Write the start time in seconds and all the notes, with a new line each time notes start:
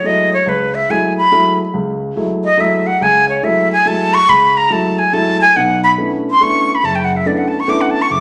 0.04 F#3 G#3 A3 E4 D#5
0.33 C#5
0.46 C#2 B4
0.75 E5
0.89 F#3 G#3 A3 E4 G#5
1.18 B5
1.31 F#3 G#3 A3 E4
1.74 C#2
2.16 F#3 G#3 A3 E4
2.44 D#5
2.57 F#3 G#3 A3 E4 E5
2.87 F#5
3.01 C#2 G#5
3.29 C#5
3.43 F#3 G#3 A3 E4 E5
3.73 G#5
3.85 F#3 G#3 A3 E4 A5
4.14 C#6
4.28 C#2 B5
4.57 A#5
4.70 F#3 G#3 A3 E4 A5
4.99 G#5
5.13 F#3 G#3 A3 E4 A5
5.41 G#5
5.56 B1 B2 F#5
5.84 B5
5.98 A3 B3 C#4 D4 E4
6.31 C6
6.41 A3 B3 C#4 D4 E4 C#6
6.75 B5
6.83 F#1 A5
6.95 G5
7.04 F#5
7.17 E5
7.25 A3 B3 C#4 D4 E4 D5
7.38 F#5
7.48 A5
7.60 C#6
7.68 A3 B3 C#4 D4 E4 D6
7.81 F#5
7.91 A5
8.02 C#6
8.10 F#1 D6